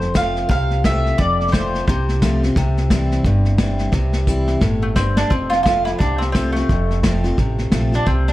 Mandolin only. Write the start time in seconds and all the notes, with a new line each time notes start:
Already playing: C5
0.16 F5
0.51 F5
0.85 E5
1.18 D5
1.52 C5
1.87 C5
4.82 A3
4.96 C4
5.17 D4
5.30 C4
5.50 F4
5.63 F4
5.85 E4
5.98 D4
6.18 C4
6.32 C4
6.53 A3
7.95 D4
8.07 C4
8.28 D4